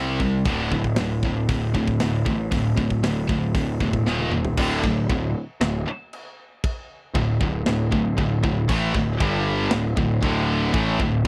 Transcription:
0.00 0.42 C2 loud
0.00 0.18 C3 medium
0.00 0.19 G3 medium
0.00 0.19 C4 loud
0.20 0.43 C3 medium
0.20 0.43 G3 medium
0.20 kick medium
0.45 0.69 D1 medium
0.45 0.70 D2 medium
0.45 0.70 A2 medium
0.45 0.70 D3 loud
0.45 kick loud
0.45 open hi-hat medium
0.72 0.95 D1 medium
0.72 0.95 D2 medium
0.72 0.95 A2 medium
0.72 kick medium
0.84 kick medium
0.96 1.45 D1 medium
0.96 1.21 D2 medium
0.96 1.21 A2 medium
0.96 snare loud
0.96 open hi-hat medium
1.23 1.47 D2 medium
1.23 1.47 A2 medium
1.23 kick medium
1.49 1.72 D1 medium
1.49 1.72 D2 medium
1.49 1.72 A2 medium
1.49 kick loud
1.49 open hi-hat medium
1.74 1.98 D1 medium
1.74 1.97 D2 medium
1.74 1.98 A2 medium
1.74 kick medium
1.88 kick medium
2.00 2.24 D1 medium
2.00 2.23 D2 medium
2.00 2.24 A2 medium
2.00 snare loud
2.00 open hi-hat medium
2.26 2.49 A1 medium
2.26 2.49 D2 medium
2.26 2.49 A2 medium
2.26 kick loud
2.51 2.75 D1 medium
2.51 2.75 D2 medium
2.51 2.75 A2 medium
2.51 kick loud
2.51 open hi-hat medium
2.76 3.01 D1 medium
2.76 3.00 D2 medium
2.76 3.01 A2 medium
2.76 kick medium
2.90 kick medium
3.03 3.27 D1 medium
3.03 3.26 D2 medium
3.03 3.27 A2 medium
3.03 snare loud
3.03 open hi-hat medium
3.27 3.52 D1 medium
3.27 3.52 D2 medium
3.27 3.52 A2 medium
3.27 kick medium
3.54 3.78 D1 medium
3.54 3.78 D2 medium
3.54 3.78 A2 medium
3.54 kick loud
3.54 open hi-hat medium
3.80 4.04 E1 medium
3.80 4.04 D2 medium
3.80 4.04 A2 medium
3.80 kick medium
3.93 kick medium
4.05 4.54 D#1 medium
4.05 4.31 D#2 loud
4.05 4.31 A#2 loud
4.05 4.31 D#3 medium
4.05 snare medium
4.19 high tom medium
4.32 4.56 D#2 medium
4.32 4.56 A#2 medium
4.32 mid tom medium
4.45 floor tom medium
4.57 4.82 D1 medium
4.57 4.83 D2 loud
4.57 4.84 A2 loud
4.57 4.84 D3 loud
4.57 kick loud
4.57 crash loud
4.57 china medium
4.84 5.08 D1 medium
4.84 5.05 D2 medium
4.84 5.05 A2 medium
4.84 kick medium
5.09 5.33 D1 medium
5.09 5.31 D2 medium
5.09 5.31 A2 medium
5.09 kick loud
5.09 china medium
5.61 5.85 D1 medium
5.61 5.82 D2 medium
5.61 5.82 A2 medium
5.61 snare loud
5.61 china medium
5.87 muted picked electric bass stroke soft
5.87 muted distorted electric guitar stroke medium
6.13 china medium
6.64 kick loud
6.64 china medium
7.14 7.38 D1 medium
7.14 7.36 D2 medium
7.14 7.36 A2 medium
7.14 kick loud
7.14 china medium
7.41 7.64 D1 medium
7.41 7.61 D2 medium
7.41 7.62 A2 medium
7.41 kick medium
7.66 7.90 D1 medium
7.66 7.87 D2 medium
7.66 7.87 A2 medium
7.66 snare loud
7.66 china medium
7.92 8.16 D1 medium
7.92 8.12 D2 medium
7.92 8.12 A2 medium
7.92 kick loud
8.18 8.41 D1 medium
8.18 8.38 D2 medium
8.18 8.38 A2 medium
8.18 kick medium
8.18 china medium
8.43 8.67 D1 medium
8.43 8.64 D2 medium
8.43 8.64 A2 medium
8.43 kick medium
8.69 8.93 A1 medium
8.69 8.94 A2 medium
8.69 8.94 E3 loud
8.69 8.95 A3 loud
8.69 kick loud
8.69 crash loud
8.69 china medium
8.94 9.18 D1 medium
8.94 9.15 D2 medium
8.94 9.16 A2 medium
8.94 kick medium
9.20 9.68 G1 loud
9.20 9.70 G2 loud
9.20 9.71 D3 loud
9.20 9.71 G3 loud
9.20 kick loud
9.20 china medium
9.71 9.96 D1 medium
9.71 9.92 D2 medium
9.71 9.92 A2 medium
9.71 snare loud
9.71 china medium
9.96 10.20 D1 medium
9.96 10.18 D2 medium
9.96 10.18 A2 medium
9.96 kick loud
10.22 10.70 D1 loud
10.22 10.73 D2 loud
10.22 10.73 A2 loud
10.22 10.74 D3 loud
10.22 kick loud
10.22 china medium
10.74 10.97 A1 medium
10.74 10.99 A2 loud
10.74 10.99 E3 loud
10.74 10.99 A3 loud
10.74 kick loud
10.74 china medium
11.00 11.23 D1 medium
11.00 11.20 D2 medium
11.00 11.20 A2 medium
11.00 kick medium

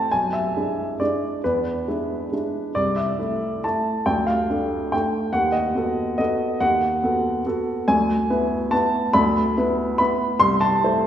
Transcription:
0.00 0.10 A5 medium
0.11 0.54 B1 soft
0.11 0.33 G#5 medium
0.33 1.00 E5 medium
0.56 0.97 G#3 soft
0.56 0.97 D4 soft
0.56 0.98 E4 soft
1.00 1.41 G#3 soft
1.00 1.41 D4 soft
1.00 1.41 E4 soft
1.00 1.44 D5 medium
1.44 1.86 E2 soft
1.44 2.76 B4 medium
1.88 2.29 G#3 soft
1.88 2.29 D4 soft
1.88 2.29 E4 soft
2.32 2.72 G#3 soft
2.32 2.72 D4 soft
2.32 2.73 E4 soft
2.75 3.18 C2 soft
2.75 2.97 D5 medium
2.96 3.63 E5 medium
3.19 3.60 A3 soft
3.19 3.60 E4 soft
3.64 4.03 A3 soft
3.64 4.03 E4 soft
3.64 4.07 A5 medium
4.06 4.48 D2 soft
4.06 4.27 G5 medium
4.27 4.93 F5 medium
4.50 4.90 A3 soft
4.50 4.90 D4 soft
4.50 4.90 A4 soft
4.92 5.30 A3 soft
4.92 5.31 D4 soft
4.92 5.31 A4 soft
4.92 5.34 G5 medium
5.33 5.74 D#2 soft
5.33 5.54 F#5 medium
5.52 6.16 D#5 medium
5.75 6.15 B3 soft
5.75 6.16 F#4 soft
5.75 6.16 A4 soft
6.18 6.57 B3 soft
6.18 6.57 F#4 soft
6.18 6.57 A4 soft
6.18 6.61 D#5 medium
6.60 7.01 D#2 soft
6.60 7.87 F#5 medium
7.03 7.41 B3 soft
7.03 7.41 F#4 soft
7.03 7.41 A4 soft
7.46 7.83 B3 soft
7.46 7.84 F#4 soft
7.46 7.84 A4 soft
7.88 8.28 D2 soft
7.88 8.72 G#5 medium
8.30 8.68 B3 soft
8.30 8.68 E4 soft
8.30 8.68 B4 soft
8.71 9.10 B3 soft
8.71 9.10 E4 soft
8.71 9.10 B4 soft
8.71 9.14 A5 medium
9.13 9.55 D2 medium
9.13 9.97 B5 medium
9.57 9.96 B3 soft
9.57 9.96 E4 soft
9.57 9.97 B4 soft
9.98 10.37 B3 soft
9.98 10.37 E4 soft
9.98 10.38 B4 soft
9.98 10.40 B5 medium
10.40 10.81 C2 medium
10.40 10.61 C6 medium
10.61 11.07 A5 medium
10.84 11.07 A3 soft
10.84 11.07 E4 soft
10.84 11.07 C5 soft

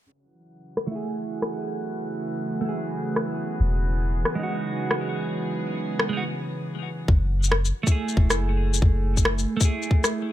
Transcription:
0.12 7.08 C#3 medium
0.12 6.21 F#4 medium
0.12 6.22 F#5 medium
0.28 7.08 E3 medium
0.33 7.08 F#3 medium
0.77 7.08 B3 medium
0.77 cross-stick medium
0.87 2.60 A3 medium
0.87 2.62 E4 medium
0.94 7.08 G#4 medium
0.94 2.64 G#4 medium
1.42 cross-stick medium
2.61 3.57 A3 medium
2.65 3.59 E4 medium
2.65 3.61 G#4 medium
3.16 cross-stick loud
3.60 4.24 E1 medium
4.25 cross-stick loud
4.35 6.08 G#3 medium
4.39 6.10 D#4 medium
4.39 6.12 F#4 medium
4.91 cross-stick loud
5.99 cross-stick loud
6.09 6.19 G#3 medium
6.09 6.21 D#4 medium
6.17 6.23 F#4 medium
7.08 7.72 F#1 medium
7.08 kick loud
7.43 shaker medium
7.52 cross-stick loud
7.65 shaker soft
7.83 9.55 A3 medium
7.83 kick loud
7.83 shaker medium
7.87 9.58 E4 medium
7.92 9.60 G#4 medium
8.09 shaker soft
8.17 8.31 E1 medium
8.17 kick loud
8.30 8.81 F#1 medium
8.30 cross-stick loud
8.30 shaker medium
8.74 shaker medium
8.82 9.46 F#1 loud
8.82 kick loud
9.17 kick medium
9.17 shaker medium
9.25 cross-stick loud
9.39 shaker soft
9.57 10.32 A3 medium
9.57 10.32 E4 medium
9.57 shaker medium
9.61 kick loud
9.65 10.32 G#4 medium
9.82 shaker soft
9.91 kick loud
10.04 cross-stick loud
10.04 shaker medium

